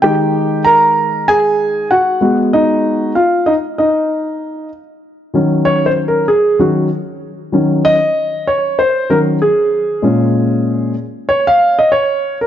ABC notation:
X:1
M:4/4
L:1/16
Q:"Swing 16ths" 1/4=96
K:Ebm
V:1 name="Grand piano"
[=G=g]4 [Bb]4 [Aa]4 [_G_g]3 z | [Ee]4 [Ff]2 [Ee]2 [Ee]6 z2 | z4 (3d2 =c2 B2 A2 G2 z4 | z2 e4 d2 =c2 B2 A4- |
A6 z2 d f2 e d3 B |]
V:2 name="Grand piano" clef=bass
[E,A,E]12- [E,A,E]2 [A,CG]2- | [A,CG]4 z12 | z2 [E,G,D]6 z2 [E,G,D]2 z4 | [E,G,D]2 z8 [E,G,D]2 z4 |
[B,,A,D]6 z8 z2 |]